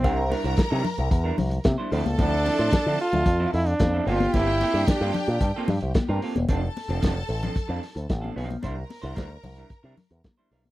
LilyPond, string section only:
\new Staff \with { instrumentName = "String section" } { \time 4/4 \key f \major \tempo 4 = 112 <bes' bes''>2. r8 <a' a''>8~ | <a' a''>2. r8 <g' g''>8~ | <g' g''>2.~ <g' g''>8 r8 | <a' a''>2.~ <a' a''>8 r8 |
<bes' bes''>2.~ <bes' bes''>8 r8 | }